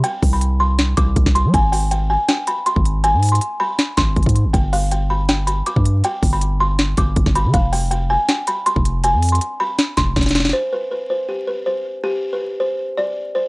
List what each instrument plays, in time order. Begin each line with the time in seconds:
0.04 kalimba G5, closed hi-hat
0.23 808-style bass C2, kick, open hi-hat
0.33 kalimba B5
0.41 closed hi-hat
0.60 kalimba C6
0.79 snare, closed hi-hat
0.97 808-style bass C2, kalimba D6, kick, closed hi-hat
1.16 808-style bass C2, kick, closed hi-hat
1.26 808-style bass C2, kick, snare
1.35 kalimba C6, closed hi-hat
1.45 808-style bass G3
1.54 808-style bass G#1, kalimba G#5, kick, closed hi-hat
1.72 kalimba G5, open hi-hat
1.91 kalimba G5, closed hi-hat
2.10 kalimba G#5
2.28 kalimba G5, snare, closed hi-hat
2.47 kalimba B5, closed hi-hat
2.66 kalimba C6, closed hi-hat
2.76 808-style bass G#1, kick
2.85 closed hi-hat
3.04 kalimba G#5, closed hi-hat
3.14 808-style bass G#2
3.23 closed hi-hat, open hi-hat
3.29 kalimba C6, closed hi-hat
3.35 closed hi-hat
3.41 closed hi-hat
3.60 kalimba B5
3.79 snare, closed hi-hat
3.97 808-style bass G#1, kalimba C6, kick, snare, closed hi-hat
4.16 808-style bass G#1, kick, closed hi-hat
4.23 808-style bass G#2, kick, closed hi-hat
4.29 closed hi-hat
4.36 closed hi-hat
4.45 808-style bass G1
4.53 808-style bass G1, kalimba G5, kick, closed hi-hat
4.73 kalimba F5, open hi-hat
4.91 kalimba G5, closed hi-hat
5.10 kalimba B5
5.29 kalimba G5, snare, closed hi-hat
5.47 kalimba B5, closed hi-hat
5.66 kalimba D6, closed hi-hat
5.76 808-style bass G2, kick
5.85 closed hi-hat
6.04 kalimba G5, closed hi-hat
6.23 808-style bass G1, kick, open hi-hat
6.33 kalimba B5
6.41 closed hi-hat
6.60 kalimba C6
6.79 snare, closed hi-hat
6.97 808-style bass G1, kalimba D6, kick, closed hi-hat
7.16 808-style bass G1, kick, closed hi-hat
7.26 808-style bass G1, kick, snare
7.35 kalimba B5, closed hi-hat
7.45 808-style bass D3
7.54 808-style bass F1, kalimba F5, kick, closed hi-hat
7.73 kalimba G5, open hi-hat
7.91 kalimba G5, closed hi-hat
8.10 kalimba G#5
8.29 kalimba G5, snare, closed hi-hat
8.47 kalimba B5, closed hi-hat
8.66 kalimba C6, closed hi-hat
8.76 808-style bass F1, kick
8.85 closed hi-hat
9.04 kalimba G#5, closed hi-hat
9.14 808-style bass F2
9.22 closed hi-hat, open hi-hat
9.29 kalimba C6, closed hi-hat
9.35 closed hi-hat
9.41 closed hi-hat
9.60 kalimba B5
9.79 snare, closed hi-hat
9.97 808-style bass F1, kalimba C6, kick, snare, closed hi-hat
10.16 808-style bass F1, kick, snare, closed hi-hat
10.21 snare, closed hi-hat
10.26 snare, closed hi-hat
10.31 snare
10.35 snare, closed hi-hat
10.40 snare
10.45 snare
10.49 kalimba C5, snare
10.73 kalimba B4
10.91 kalimba B4
11.10 kalimba C5
11.29 kalimba G4
11.47 kalimba B4
11.66 kalimba C5
12.04 kalimba G4
12.33 kalimba B4
12.60 kalimba C5
12.97 kalimba D5
13.35 kalimba C5